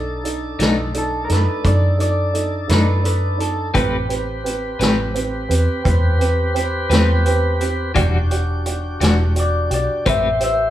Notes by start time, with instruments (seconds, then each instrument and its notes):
Already playing: fingered electric bass B1, tonewheel organ D4 D#4 A4, upright piano D#4 A4 D5
0.24 upright piano D#4 A4 D5, closed hi-hat
0.59 fingered electric bass B1, clean electric guitar B2 A3 D4 D#4, upright piano D#4 A4 D5, snare, closed hi-hat
0.94 upright piano D#4 A4 D5, clean electric guitar A4, closed hi-hat
1.25 upright piano D#4, clean electric guitar A#4
1.29 fingered electric bass F#2, upright piano A4 D5, clean electric guitar B4, snare, closed hi-hat
1.63 fingered electric bass F#2, upright piano D#4 A4 D5, clean electric guitar D5, kick, closed hi-hat
1.98 upright piano D#4 A4 D5, clean electric guitar D5, closed hi-hat
2.33 upright piano D#4 A4 D5, closed hi-hat
2.68 fingered electric bass F#2, clean electric guitar A3 D4 D#4 B4, upright piano D#4 A4 D5, snare, closed hi-hat
2.72 clean electric guitar B2
3.02 upright piano D#4 A4 D5, clean electric guitar B4, closed hi-hat
3.38 upright piano D#4 A4 D5, clean electric guitar A4, closed hi-hat
3.74 fingered electric bass A1, clean electric guitar A3 C4 G4 B4, upright piano C4 G4 B4, tonewheel organ C4 G4 B4, kick, closed hi-hat
4.09 upright piano C4 G4 B4, closed hi-hat
4.44 upright piano C4 G4 B4, closed hi-hat
4.79 fingered electric bass A1, clean electric guitar A3 C4 G4 B4, upright piano C4 G4 B4, snare, closed hi-hat
5.14 upright piano C4 G4 B4, closed hi-hat
5.49 fingered electric bass E2, upright piano C4 G4 B4, closed hi-hat
5.84 fingered electric bass E2, upright piano C4 G4 B4, kick, closed hi-hat
6.19 upright piano C4 G4 B4, closed hi-hat
6.54 upright piano C4 G4 B4, closed hi-hat
6.89 fingered electric bass E2, clean electric guitar A3 C4 G4 B4, upright piano C4 G4 B4, snare, closed hi-hat
7.25 upright piano C4 G4 B4, closed hi-hat
7.60 upright piano C4 G4 B4, closed hi-hat
7.95 fingered electric bass E1, clean electric guitar E3 G3 D4 F#4, tonewheel organ D4 F#4 G4, upright piano F#4 G4 D5, kick, closed hi-hat
8.30 upright piano F#4 G4 D5, closed hi-hat
8.66 upright piano F#4 G4 D5, closed hi-hat
9.00 fingered electric bass E1, clean electric guitar E3 G3 D4 F#4, upright piano F#4 G4 D5, snare, closed hi-hat
9.35 upright piano F#4 G4 D5, closed hi-hat
9.40 clean electric guitar D5
9.70 fingered electric bass B1, upright piano F#4 G4 D5, closed hi-hat
9.74 clean electric guitar D5
10.05 fingered electric bass A1, clean electric guitar A3 C4 G4 B4 E5, tonewheel organ C4 G4 C5, upright piano G4 B4 C5, kick, closed hi-hat
10.40 upright piano G4 B4 C5, clean electric guitar E5, closed hi-hat